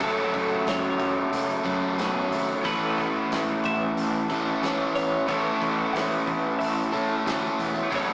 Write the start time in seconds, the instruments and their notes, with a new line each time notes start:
Already playing: clean electric guitar A3 C#4, ambient pad A4 F#5 C#6
0.00 picked electric bass F#1, overdriven electric guitar F#2 C#3 F#3 A3 C#4 F#4 A4, clean electric guitar F#3 A4, kick, open hi-hat
0.32 picked electric bass F#1, clean electric guitar A3, kick, open hi-hat
0.65 picked electric bass F#1, clean electric guitar F#3 C#5, snare, open hi-hat
0.98 picked electric bass F#1, clean electric guitar A3, kick, open hi-hat
1.32 picked electric bass F#1, clean electric guitar F#3, open hi-hat
1.64 picked electric bass F#2, overdriven electric guitar F#2 C#3 F#3 A3 C#4 F#4, clean electric guitar F#3, kick, open hi-hat
1.97 picked electric bass B1, overdriven electric guitar F#2 C#3 F#3 A3 C#4 F#4, clean electric guitar C#4, snare, open hi-hat
2.31 picked electric bass G#1, clean electric guitar A3, open hi-hat
2.63 picked electric bass A1, overdriven electric guitar A2 E3 A3 C#4 E4 A4, clean electric guitar E3 B4, ambient pad B4 A5, kick, open hi-hat
2.97 clean electric guitar B3, kick, open hi-hat
3.29 picked electric bass A1, clean electric guitar E3, snare, open hi-hat
3.62 picked electric bass A1, clean electric guitar B3 E5, kick, open hi-hat
3.96 picked electric bass A1, clean electric guitar E3, open hi-hat
4.29 picked electric bass A1, overdriven electric guitar A2 E3 A3 C#4 A4, clean electric guitar E3, kick, open hi-hat
4.62 picked electric bass A1, overdriven electric guitar A2 E3 A3 C#4 A4, clean electric guitar C#4, snare, open hi-hat
4.95 picked electric bass A1, clean electric guitar B3 C#5, open hi-hat
5.27 picked electric bass A1, overdriven electric guitar A2 E3 A3 C#4 E4 A4, clean electric guitar E3 C#5, kick, open hi-hat
5.60 picked electric bass A1, clean electric guitar B3, kick, open hi-hat
5.93 picked electric bass A1, clean electric guitar E3 F#5, snare, open hi-hat
6.26 picked electric bass A1, clean electric guitar B3, kick, open hi-hat
6.59 picked electric bass A1, clean electric guitar E3 E5, open hi-hat
6.92 picked electric bass A2, overdriven electric guitar A2 E3 A3 C#4 A4, clean electric guitar E3, kick, open hi-hat
7.26 picked electric bass D2, overdriven electric guitar A2 E3 A3 C#4 A4, clean electric guitar C#4, snare, open hi-hat
7.59 picked electric bass E1, clean electric guitar B3, open hi-hat
7.90 picked electric bass F#1, overdriven electric guitar F#2 C#3 F#3 A3 C#4 F#4 A4, clean electric guitar F#3, ambient pad A4, kick, open hi-hat
7.96 clean electric guitar C#5